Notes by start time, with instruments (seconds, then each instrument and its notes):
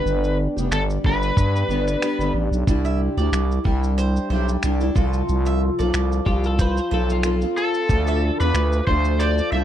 Already playing: steel-string acoustic guitar G2 D3 G3 B3 D4 G4, electric slide guitar B4
0.06 fm bass G1, shaker
0.24 shaker
0.56 fm bass F1, steel-string acoustic guitar G3 B3 D4 G4, shaker
0.71 fm bass G1, electric slide guitar A4, finger snap, shaker
0.90 shaker
1.04 fm bass G1, steel-string acoustic guitar G3 B3 D4 G4, electric slide guitar B4, kick
1.22 shaker
1.37 fm bass G2, kick, shaker
1.56 shaker
1.69 fm bass G1, steel-string acoustic guitar G3 B3 D4 G4, shaker
1.87 finger snap, shaker
2.01 steel-string acoustic guitar G3 B3 D4 G4, finger snap, shaker
2.19 fm bass G1, steel-string acoustic guitar G3 B3 D4 G4, shaker
2.34 fm bass A1
2.51 fm bass B1, shaker
2.67 fm bass C2, steel-string acoustic guitar C3 G3 D4 E4 G4, kick, shaker
2.85 mandolin E5, shaker
3.17 fm bass D2, steel-string acoustic guitar D4 E4 G4, mandolin D5, shaker
3.32 fm bass C2, finger snap, shaker
3.51 shaker
3.64 fm bass C2, steel-string acoustic guitar G3 D4 E4 G4, kick
3.83 shaker
3.98 mandolin C5, shaker
4.16 shaker
4.30 fm bass B1, steel-string acoustic guitar G3 D4 E4 G4, mandolin C5
4.48 shaker
4.63 fm bass C2, steel-string acoustic guitar G3 D4 E4 G4, finger snap, shaker
4.80 steel-string acoustic guitar D4 E4 G4, shaker
4.95 fm bass C2, steel-string acoustic guitar C3 F3 C4 F4 A4, kick, shaker
5.13 shaker
5.29 fm bass C2, shaker
5.46 mandolin E5, shaker
5.79 fm bass B1, steel-string acoustic guitar C4 F4 A4, mandolin D5, shaker
5.94 fm bass C2, finger snap, shaker
6.12 shaker
6.25 fm bass C2, steel-string acoustic guitar F3 C4 F4 A4, clean electric guitar G4, kick
6.44 clean electric guitar A4, shaker
6.59 clean electric guitar B4, mandolin C5, kick, shaker
6.77 clean electric guitar C5, shaker
6.91 fm bass B1, steel-string acoustic guitar F3 C4 F4 A4, clean electric guitar A4, mandolin C5
7.09 clean electric guitar F4, shaker
7.23 steel-string acoustic guitar F3 C4 F4 A4, finger snap, shaker
7.41 steel-string acoustic guitar C4 F4 A4, shaker
7.57 electric slide guitar A4, shaker
7.74 shaker
7.88 fm bass D2, steel-string acoustic guitar D3 F3 D4 F4 A4, kick, shaker
8.07 mandolin E5, shaker
8.40 fm bass E2, steel-string acoustic guitar D4 F4 A4, electric slide guitar B4, mandolin D5, shaker
8.54 fm bass D2, finger snap, shaker
8.72 shaker
8.86 fm bass D2, steel-string acoustic guitar F3 D4 F4 A4, electric slide guitar C5, kick
9.05 shaker
9.19 mandolin C5, electric slide guitar D5, shaker
9.38 shaker
9.52 fm bass C2, steel-string acoustic guitar F3 D4 F4 A4, mandolin C5, electric slide guitar E5